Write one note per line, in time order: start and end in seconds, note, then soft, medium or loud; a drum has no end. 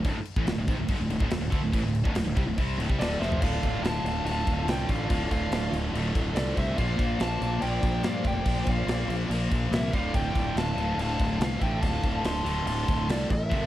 0.04 0.14 D1 medium
0.04 0.15 D2 loud
0.04 0.15 A2 loud
0.04 kick loud
0.04 crash medium
0.15 muted fingered electric bass stroke soft
0.15 muted distorted electric guitar stroke medium
0.25 crash medium
0.36 0.45 A1 loud
0.36 0.47 A2 loud
0.36 0.47 E3 medium
0.36 kick loud
0.46 0.56 D1 medium
0.46 0.57 D2 medium
0.46 0.58 A2 medium
0.46 snare loud
0.46 crash medium
0.57 0.67 D1 loud
0.57 0.68 D2 medium
0.57 0.68 A2 medium
0.68 0.78 G#1 loud
0.68 0.78 G#2 medium
0.68 0.78 D#3 loud
0.68 kick loud
0.68 crash medium
0.78 0.88 D1 medium
0.78 0.88 D2 medium
0.78 0.89 A2 medium
0.88 0.99 G1 loud
0.88 0.99 G2 loud
0.88 0.99 D3 loud
0.88 kick loud
0.88 crash medium
0.99 1.09 D1 medium
0.99 1.09 D2 medium
0.99 1.09 A2 medium
1.09 1.19 D1 medium
1.09 1.19 D2 medium
1.09 1.19 A2 medium
1.09 crash medium
1.20 1.29 D1 medium
1.20 1.28 D2 loud
1.20 1.29 A2 loud
1.20 kick loud
1.29 1.40 D1 medium
1.29 1.39 D2 medium
1.29 1.40 A2 medium
1.29 snare loud
1.29 crash medium
1.40 1.51 D1 medium
1.40 1.52 D2 medium
1.40 1.50 A2 medium
1.50 1.60 D2 loud
1.50 1.61 D3 medium
1.50 1.61 A3 medium
1.50 kick loud
1.50 crash medium
1.61 1.72 D1 medium
1.61 1.72 D2 medium
1.61 1.71 A2 medium
1.72 1.83 A1 loud
1.72 1.82 A2 loud
1.72 1.83 E3 loud
1.72 kick loud
1.72 crash medium
1.83 2.03 D1 medium
1.83 2.00 D2 medium
1.83 2.00 A2 medium
1.95 crash medium
2.03 2.14 D1 loud
2.03 2.13 D2 medium
2.03 2.14 A2 medium
2.03 kick loud
2.14 2.25 D1 medium
2.14 2.23 D2 medium
2.14 2.23 A2 medium
2.14 snare loud
2.14 crash medium
2.24 2.35 D1 medium
2.24 2.34 D2 medium
2.24 2.35 A2 medium
2.35 2.46 C2 loud
2.35 2.45 C3 loud
2.35 2.45 G3 loud
2.35 kick loud
2.35 crash medium
2.46 2.56 D1 medium
2.46 2.57 D2 medium
2.46 2.57 A2 medium
2.58 2.77 C2 medium
2.58 2.77 C3 loud
2.58 2.78 G3 loud
2.58 2.78 C4 loud
2.58 kick loud
2.58 crash medium
2.78 2.88 D1 loud
2.78 2.87 D2 loud
2.78 2.88 A2 loud
2.78 crash medium
2.88 2.99 C2 medium
2.88 2.98 C3 medium
2.88 2.98 G3 medium
2.88 kick loud
2.98 3.19 D1 loud
2.98 3.19 D2 medium
2.98 3.19 A2 medium
2.98 3.20 D3 loud
2.98 3.19 A4 medium
2.98 3.21 D5 medium
2.98 crash medium
3.02 snare loud
3.19 3.40 F1 medium
3.19 3.39 F2 medium
3.19 3.40 C3 medium
3.19 3.41 F3 loud
3.19 3.39 C5 medium
3.19 3.41 E5 medium
3.19 snare medium
3.32 floor tom medium
3.39 3.60 D1 loud
3.39 4.24 D2 loud
3.39 4.24 A2 loud
3.39 6.73 D3 medium
3.39 4.26 D3 loud
3.39 6.73 A3 medium
3.39 6.74 D4 medium
3.39 6.73 F4 medium
3.39 3.81 D5 medium
3.39 3.80 F5 loud
3.39 kick loud
3.39 crash loud
3.39 crash medium
3.63 3.81 D1 medium
3.63 kick medium
3.63 crash medium
3.82 4.01 D1 medium
3.82 4.24 F5 medium
3.82 4.22 A5 loud
3.82 snare loud
3.82 crash medium
4.04 4.22 D1 loud
4.04 crash medium
4.24 4.43 D1 loud
4.24 5.07 D2 medium
4.24 5.08 A2 medium
4.24 5.09 D3 medium
4.24 4.65 F5 medium
4.24 4.68 A5 loud
4.24 crash medium
4.47 4.65 D1 medium
4.47 kick loud
4.47 crash medium
4.67 4.85 C2 loud
4.67 4.88 D5 medium
4.67 4.90 G5 loud
4.67 snare loud
4.67 crash medium
4.89 5.07 A1 medium
4.89 5.28 D5 medium
4.89 5.31 F5 medium
4.89 kick medium
4.89 crash medium
5.09 5.28 D1 loud
5.09 5.91 D2 loud
5.09 5.92 A2 loud
5.09 5.93 D3 loud
5.09 kick loud
5.09 crash medium
5.31 5.49 D1 medium
5.31 5.70 D5 medium
5.31 5.70 F5 medium
5.31 kick medium
5.31 crash medium
5.51 5.69 D1 medium
5.51 snare loud
5.51 crash medium
5.72 5.90 D1 loud
5.72 crash medium
5.92 6.11 D1 medium
5.92 6.75 D2 medium
5.92 6.76 A2 medium
5.92 6.77 D3 medium
5.92 crash medium
6.15 6.33 D1 loud
6.15 kick loud
6.15 crash medium
6.34 6.53 C2 medium
6.34 6.54 A4 medium
6.34 6.57 D5 loud
6.34 snare loud
6.34 crash medium
6.55 6.75 C2 loud
6.55 6.75 C5 medium
6.55 6.78 E5 medium
6.55 kick medium
6.55 crash medium
6.75 6.96 A#1 loud
6.75 7.59 A#2 medium
6.75 7.62 F3 loud
6.75 7.61 A#3 loud
6.75 9.90 A#3 loud
6.75 13.47 F4 medium
6.75 9.90 C5 medium
6.75 7.16 D5 medium
6.75 9.90 D5 medium
6.75 7.21 F5 loud
6.75 kick loud
6.75 crash medium
6.99 7.17 A#1 medium
6.99 kick medium
6.99 crash medium
7.19 7.38 A#1 medium
7.19 7.58 F5 medium
7.19 7.61 A5 loud
7.19 snare loud
7.19 crash medium
7.41 7.59 A#1 loud
7.41 crash medium
7.61 7.80 A#1 medium
7.61 8.44 A#2 medium
7.61 8.46 F3 medium
7.61 8.46 A#3 loud
7.61 8.00 D5 loud
7.61 8.00 G5 loud
7.61 crash medium
7.83 8.01 A#1 loud
7.83 kick medium
7.83 crash medium
8.03 8.22 G2 medium
8.03 8.23 D5 medium
8.03 8.23 F5 medium
8.03 snare loud
8.03 crash medium
8.24 8.43 F1 medium
8.24 8.65 D5 medium
8.24 8.69 G5 medium
8.24 kick medium
8.24 crash medium
8.45 8.64 A#1 loud
8.45 9.27 A#2 loud
8.45 9.30 F3 loud
8.45 9.30 A#3 loud
8.45 kick medium
8.45 crash medium
8.66 8.85 A#1 medium
8.66 9.06 D5 medium
8.66 9.08 F5 medium
8.66 kick medium
8.66 crash medium
8.86 9.05 A#1 medium
8.86 snare loud
8.86 crash medium
9.08 9.26 A#1 loud
9.08 crash medium
9.28 9.47 A#1 medium
9.28 9.90 A#2 medium
9.28 9.92 F3 medium
9.28 9.92 A#3 medium
9.28 crash medium
9.51 9.69 A#1 medium
9.51 kick loud
9.51 crash medium
9.71 9.90 C2 loud
9.71 9.92 A#4 medium
9.71 9.92 E5 loud
9.71 snare loud
9.71 crash medium
9.91 10.11 D1 medium
9.91 10.78 D2 medium
9.91 10.76 A2 medium
9.91 13.47 D3 medium
9.91 10.75 D3 medium
9.91 13.47 A3 medium
9.91 13.47 D4 medium
9.91 10.13 D5 medium
9.91 10.15 F5 medium
9.91 kick medium
9.91 crash medium
10.14 10.32 D1 loud
10.14 10.53 D5 medium
10.14 10.54 G5 medium
10.14 kick loud
10.14 crash medium
10.35 10.53 D1 medium
10.35 kick loud
10.35 crash medium
10.56 10.74 D1 loud
10.56 10.96 F5 medium
10.56 10.96 A5 medium
10.56 snare loud
10.56 crash medium
10.76 10.95 D1 medium
10.76 11.59 D2 medium
10.76 11.60 A2 medium
10.76 11.59 D3 medium
10.76 crash medium
10.97 11.16 D1 medium
10.97 11.37 F5 medium
10.97 11.43 A5 medium
10.97 crash medium
11.20 11.38 D1 loud
11.20 kick medium
11.20 crash medium
11.39 11.58 C2 medium
11.39 11.59 D5 medium
11.39 snare loud
11.39 crash medium
11.43 11.63 F5 loud
11.60 11.79 A1 medium
11.60 12.44 D2 medium
11.60 12.45 A2 medium
11.60 12.43 D3 loud
11.60 11.80 E5 medium
11.60 11.81 G5 medium
11.60 kick medium
11.60 crash medium
11.82 12.01 D1 loud
11.82 12.22 F5 medium
11.82 12.25 A5 loud
11.82 kick loud
11.82 crash medium
12.03 12.22 D1 medium
12.03 kick loud
12.03 crash medium
12.24 12.43 D1 loud
12.24 12.64 A5 medium
12.24 12.65 C6 loud
12.24 snare loud
12.24 crash medium
12.44 12.63 D1 medium
12.44 13.29 D2 medium
12.44 13.29 A2 medium
12.44 13.28 D3 medium
12.44 crash medium
12.65 12.84 D1 medium
12.65 13.06 A5 medium
12.65 13.06 C6 loud
12.65 crash medium
12.88 13.06 D1 medium
12.88 kick medium
12.88 crash medium
13.08 13.27 C2 loud
13.08 13.30 A4 medium
13.08 13.29 D5 loud
13.08 snare loud
13.08 crash medium
13.30 13.53 A1 loud
13.30 13.66 A#4 medium
13.30 13.66 E5 medium
13.30 kick medium
13.30 crash medium
13.50 13.66 G1 loud
13.50 13.66 G2 loud
13.50 13.66 D3 loud
13.50 13.66 G3 medium
13.50 13.66 G3 loud
13.50 13.66 D4 medium
13.50 13.66 A4 medium
13.50 13.66 A#4 loud
13.50 kick loud
13.50 crash medium